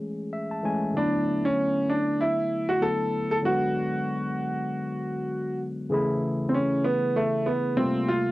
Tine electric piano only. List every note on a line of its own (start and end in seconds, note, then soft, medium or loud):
0.00 0.59 E3 medium
0.00 0.59 G#3 soft
0.00 0.60 A3 soft
0.00 0.60 C#4 medium
0.00 0.61 G#4 medium
0.33 0.50 E5 medium
0.51 0.92 A5 medium
0.63 0.95 E3 soft
0.63 0.95 G#3 soft
0.63 0.94 A3 soft
0.63 0.96 C#4 soft
0.63 0.96 G#5 medium
0.94 2.77 D3 medium
0.94 2.78 F#3 soft
0.94 2.78 A3 soft
0.94 2.79 B3 soft
0.98 2.79 E4 medium
2.81 3.41 D3 soft
2.81 3.42 F#3 soft
2.81 3.44 A3 soft
2.81 3.44 B3 soft
2.81 3.44 E4 soft
3.42 5.87 D3 medium
3.42 5.87 F#3 soft
3.42 5.88 G#3 medium
3.42 5.88 B3 soft
3.46 5.89 F#4 medium
5.90 7.72 C#3 medium
5.90 7.73 E3 medium
5.90 7.74 A3 medium
5.90 7.74 G#4 medium
5.94 7.75 E4 medium
7.76 8.31 C3 medium
7.76 8.31 G3 soft
7.76 8.31 A3 medium
7.76 8.31 A#3 medium
7.76 8.31 F4 medium